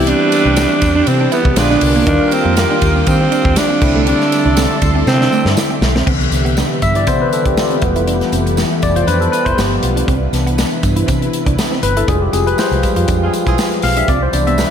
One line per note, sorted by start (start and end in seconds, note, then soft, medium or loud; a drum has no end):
0.00 0.12 C2 medium
0.00 1.53 E3 medium
0.00 1.53 G3 medium
0.00 1.53 B3 medium
0.00 1.54 C4 medium
0.00 1.30 E4 medium
0.00 1.30 G4 medium
0.00 1.53 G4 medium
0.00 1.54 G4 medium
0.00 1.30 B4 medium
0.00 1.56 E5 medium
0.00 1.54 G5 medium
0.00 2.03 A5 medium
0.07 0.17 C4 medium
0.07 1.10 D4 loud
0.07 hi-hat pedal medium
0.07 ride medium
0.32 muted clean electric guitar stroke soft
0.32 snare soft
0.32 ride medium
0.32 tambourine medium
0.45 0.65 C2 loud
0.45 0.54 D4 medium
0.56 0.67 C4 medium
0.56 snare loud
0.56 ride medium
0.56 tambourine medium
0.82 1.01 E2 loud
0.82 muted clean electric guitar stroke soft
0.82 kick medium
0.82 ride medium
0.82 tambourine soft
0.96 1.04 D4 medium
1.07 1.26 C3 loud
1.07 1.32 C4 medium
1.07 muted clean electric guitar stroke soft
1.07 ride medium
1.07 tambourine medium
1.21 1.29 D4 medium
1.32 1.60 B3 loud
1.32 1.41 E4 medium
1.32 ride soft
1.32 tambourine medium
1.45 1.54 C2 medium
1.45 kick loud
1.56 1.76 A#1 loud
1.56 2.07 D3 medium
1.56 2.07 G#3 medium
1.56 2.06 A#3 medium
1.56 2.07 B3 medium
1.56 2.07 D4 loud
1.56 1.81 F4 medium
1.56 2.07 F4 medium
1.56 1.82 G#4 medium
1.56 2.06 A#4 medium
1.56 1.81 B4 medium
1.56 2.06 G#5 medium
1.56 6.03 D6 medium
1.56 snare loud
1.56 ride medium
1.56 tambourine medium
1.70 1.78 D4 medium
1.70 snare soft
1.81 2.01 C2 loud
1.81 muted clean electric guitar stroke soft
1.81 open hi-hat medium
1.81 ride medium
1.96 2.04 A#3 medium
2.06 2.17 D#2 loud
2.06 3.78 D#3 medium
2.06 3.78 G3 medium
2.06 3.79 A#3 medium
2.06 3.79 D4 medium
2.06 2.35 D4 loud
2.06 2.16 D#4 medium
2.06 2.14 E4 medium
2.06 3.54 F4 medium
2.06 3.80 G4 medium
2.06 3.54 G4 medium
2.06 3.54 A#4 loud
2.06 3.80 F5 medium
2.06 3.80 D#6 medium
2.06 kick loud
2.06 hi-hat pedal medium
2.06 ride medium
2.06 tambourine soft
2.14 3.82 F4 medium
2.31 2.58 C4 loud
2.31 muted clean electric guitar stroke soft
2.31 ride medium
2.31 tambourine medium
2.45 2.65 F2 loud
2.45 2.53 A#3 medium
2.56 3.10 A#3 medium
2.56 snare loud
2.56 ride medium
2.56 tambourine medium
2.70 2.78 D4 medium
2.82 3.01 D#2 medium
2.82 kick medium
2.82 ride medium
2.82 tambourine soft
2.96 3.04 C4 medium
3.07 3.26 D#3 loud
3.07 3.60 C4 loud
3.07 muted clean electric guitar stroke soft
3.07 kick loud
3.07 ride medium
3.07 tambourine medium
3.21 3.29 C4 medium
3.32 3.41 D4 medium
3.32 ride soft
3.32 tambourine medium
3.45 3.54 D#2 medium
3.45 kick medium
3.56 4.08 D4 loud
3.56 snare loud
3.56 ride medium
3.56 tambourine medium
3.70 3.78 C4 medium
3.81 4.12 C2 loud
3.81 5.78 D3 medium
3.81 5.78 G3 medium
3.81 5.78 A3 medium
3.81 5.79 C4 medium
3.81 5.78 D4 medium
3.81 5.78 E4 medium
3.81 5.79 E4 medium
3.81 6.05 A4 medium
3.81 5.78 A4 loud
3.81 6.05 E5 medium
3.81 6.05 C6 medium
3.81 muted clean electric guitar stroke soft
3.81 kick loud
3.81 tambourine soft
3.81 crash medium
3.96 4.04 A3 medium
4.07 4.16 C4 medium
4.07 4.77 D4 medium
4.07 hi-hat pedal medium
4.07 ride medium
4.21 snare soft
4.32 muted clean electric guitar stroke soft
4.32 snare soft
4.32 ride medium
4.32 tambourine medium
4.45 4.65 C2 loud
4.45 4.54 D4 medium
4.57 4.66 C4 medium
4.57 snare loud
4.57 ride medium
4.57 tambourine medium
4.82 5.01 D2 loud
4.82 muted clean electric guitar stroke soft
4.82 kick medium
4.82 ride medium
4.82 tambourine soft
4.95 5.03 C4 medium
5.07 5.26 C3 loud
5.07 5.54 C4 loud
5.07 muted clean electric guitar stroke soft
5.07 snare medium
5.07 tambourine medium
5.20 5.28 D4 medium
5.20 snare medium
5.32 5.41 A3 medium
5.32 tambourine medium
5.45 5.54 G2 medium
5.45 snare medium
5.57 snare loud
5.57 tambourine medium
5.70 5.78 C4 medium
5.81 6.01 B1 medium
5.81 muted clean electric guitar stroke soft
5.81 snare loud
5.81 tambourine soft
5.95 6.03 C4 medium
5.95 snare loud
6.06 6.26 C2 loud
6.06 7.80 C3 medium
6.06 7.06 D3 medium
6.06 7.07 E3 soft
6.06 7.07 B3 medium
6.06 6.16 C4 medium
6.06 9.54 G4 medium
6.06 12.04 B4 medium
6.06 7.80 E5 medium
6.06 kick loud
6.06 crash medium
6.21 closed hi-hat soft
6.31 6.61 C2 medium
6.31 muted clean electric guitar stroke soft
6.31 snare soft
6.31 closed hi-hat medium
6.31 tambourine soft
6.45 6.53 B3 medium
6.45 closed hi-hat soft
6.57 6.66 D4 medium
6.57 snare loud
6.57 tambourine medium
6.82 7.07 G2 medium
6.82 6.95 E5 medium
6.82 muted clean electric guitar stroke soft
6.82 kick medium
6.82 closed hi-hat medium
6.82 tambourine soft
6.95 7.04 E4 medium
6.95 7.08 D5 medium
6.95 closed hi-hat soft
7.07 7.27 C3 medium
7.07 7.30 D3 soft
7.07 7.30 E3 soft
7.07 7.30 B3 medium
7.07 7.16 C4 medium
7.07 7.20 C5 loud
7.07 kick medium
7.07 closed hi-hat medium
7.07 tambourine soft
7.20 7.33 B4 medium
7.20 muted clean electric guitar stroke soft
7.33 7.47 A4 medium
7.33 closed hi-hat medium
7.33 tambourine soft
7.45 7.54 C2 medium
7.45 7.54 D4 medium
7.45 7.52 G4 medium
7.45 kick medium
7.45 closed hi-hat medium
7.57 8.04 F4 medium
7.57 snare loud
7.57 tambourine medium
7.71 7.79 C4 medium
7.71 closed hi-hat soft
7.82 8.21 F1 medium
7.82 9.54 E3 medium
7.82 9.56 E3 medium
7.82 9.54 G3 soft
7.82 9.54 A3 medium
7.82 9.54 B3 medium
7.82 9.56 E4 medium
7.82 9.56 A4 medium
7.82 muted clean electric guitar stroke soft
7.82 kick loud
7.82 closed hi-hat medium
7.96 8.04 E4 medium
7.96 closed hi-hat medium
8.07 8.17 D4 medium
8.07 closed hi-hat medium
8.07 tambourine soft
8.21 snare soft
8.21 closed hi-hat soft
8.32 8.62 F1 medium
8.32 8.42 C4 medium
8.32 closed hi-hat medium
8.32 tambourine medium
8.46 muted clean electric guitar stroke soft
8.46 closed hi-hat soft
8.57 8.67 E4 medium
8.57 snare medium
8.57 tambourine medium
8.82 9.02 F1 medium
8.82 8.95 D5 loud
8.82 muted clean electric guitar stroke soft
8.82 kick medium
8.82 closed hi-hat medium
8.82 tambourine soft
8.96 9.04 F4 medium
8.96 9.08 C5 medium
8.96 closed hi-hat soft
9.07 9.27 F2 loud
9.07 9.17 D4 medium
9.07 9.13 B4 loud
9.07 closed hi-hat medium
9.07 tambourine soft
9.21 9.32 A4 medium
9.21 closed hi-hat soft
9.32 9.46 B4 medium
9.32 muted clean electric guitar stroke soft
9.32 closed hi-hat medium
9.32 tambourine medium
9.45 9.55 F1 medium
9.45 9.54 E4 medium
9.45 9.58 C5 medium
9.45 kick medium
9.45 closed hi-hat medium
9.57 9.77 G1 loud
9.57 10.05 F3 medium
9.57 10.07 G3 medium
9.57 10.05 A3 soft
9.57 10.06 B3 medium
9.57 10.07 D4 medium
9.57 10.07 F4 medium
9.57 10.04 G4 medium
9.57 muted clean electric guitar stroke soft
9.57 snare loud
9.57 tambourine medium
9.83 10.02 B1 medium
9.83 9.92 B3 medium
9.83 closed hi-hat medium
9.96 10.04 D4 medium
9.96 closed hi-hat medium
10.08 10.27 C2 loud
10.08 12.06 C3 medium
10.08 10.17 C4 medium
10.08 12.06 E4 medium
10.08 kick loud
10.08 closed hi-hat medium
10.33 10.63 C2 medium
10.33 12.04 E3 medium
10.33 12.04 B3 medium
10.33 12.05 D4 medium
10.33 muted clean electric guitar stroke soft
10.33 snare soft
10.33 closed hi-hat medium
10.33 tambourine medium
10.47 10.55 B3 medium
10.47 closed hi-hat soft
10.58 10.67 D4 medium
10.58 snare loud
10.58 tambourine medium
10.83 11.03 G2 medium
10.83 muted clean electric guitar stroke soft
10.83 kick medium
10.83 closed hi-hat medium
10.83 tambourine soft
10.96 11.04 E4 medium
10.96 closed hi-hat medium
11.08 11.28 C3 loud
11.08 11.17 C4 medium
11.08 kick medium
11.08 closed hi-hat medium
11.08 tambourine soft
11.21 muted clean electric guitar stroke soft
11.21 closed hi-hat soft
11.33 closed hi-hat medium
11.33 tambourine soft
11.46 11.55 C2 medium
11.46 11.54 D4 medium
11.46 kick medium
11.46 closed hi-hat medium
11.59 snare loud
11.59 tambourine medium
11.72 11.80 C4 medium
11.72 snare soft
11.83 12.02 G1 medium
11.83 11.89 B4 medium
11.83 muted clean electric guitar stroke soft
11.83 closed hi-hat medium
11.97 12.05 E4 medium
11.97 12.09 A4 medium
11.97 closed hi-hat medium
12.08 12.27 F1 medium
12.08 14.06 F3 medium
12.08 12.82 G3 medium
12.08 12.82 G#3 soft
12.08 12.17 D4 medium
12.08 14.06 F4 medium
12.08 12.83 F4 medium
12.08 14.06 G4 medium
12.08 12.21 G#4 medium
12.08 kick loud
12.08 closed hi-hat medium
12.08 tambourine soft
12.22 12.34 G4 medium
12.33 12.52 F1 medium
12.33 12.42 C4 medium
12.33 12.46 G#4 medium
12.33 closed hi-hat medium
12.33 tambourine medium
12.47 12.58 B4 medium
12.47 muted clean electric guitar stroke soft
12.47 closed hi-hat soft
12.58 12.68 E4 medium
12.58 13.05 C5 medium
12.58 snare loud
12.58 tambourine medium
12.71 12.80 C2 medium
12.71 closed hi-hat soft
12.83 13.06 G3 soft
12.83 13.06 G#3 soft
12.83 13.06 F4 medium
12.83 muted clean electric guitar stroke soft
12.83 kick medium
12.83 closed hi-hat medium
12.83 tambourine soft
12.96 13.06 F2 medium
12.96 13.05 F4 medium
12.96 closed hi-hat soft
13.08 13.28 F2 loud
13.08 13.17 D4 medium
13.08 kick loud
13.08 closed hi-hat medium
13.08 tambourine soft
13.23 13.32 C4 medium
13.23 13.32 F4 medium
13.23 13.32 G#4 medium
13.33 muted clean electric guitar stroke soft
13.33 closed hi-hat medium
13.33 tambourine medium
13.46 13.56 B1 medium
13.46 13.63 C4 loud
13.46 13.55 E4 medium
13.46 13.63 F4 medium
13.46 13.63 G#4 loud
13.46 kick medium
13.46 closed hi-hat medium
13.58 muted clean electric guitar stroke soft
13.58 snare loud
13.58 tambourine medium
13.72 snare soft
13.72 closed hi-hat soft
13.82 14.03 B1 medium
13.82 13.93 C4 medium
13.82 13.96 F5 loud
13.82 snare soft
13.82 open hi-hat medium
13.97 14.05 D4 medium
13.97 14.09 E5 medium
13.97 closed hi-hat medium
14.08 14.28 C2 loud
14.08 14.70 C3 medium
14.08 14.70 G3 medium
14.08 14.18 C4 medium
14.08 14.70 E4 medium
14.08 14.70 B4 medium
14.08 14.21 D5 loud
14.08 kick loud
14.08 closed hi-hat medium
14.08 tambourine soft
14.23 14.34 C5 medium
14.33 14.63 C2 medium
14.33 14.70 E3 medium
14.33 14.70 B3 medium
14.33 14.70 D4 medium
14.33 14.47 D5 medium
14.33 muted clean electric guitar stroke soft
14.33 closed hi-hat medium
14.33 tambourine medium
14.47 14.55 B3 medium
14.47 14.58 E5 medium
14.47 closed hi-hat soft
14.58 14.68 D4 medium
14.58 14.70 B4 medium
14.58 snare loud
14.58 tambourine medium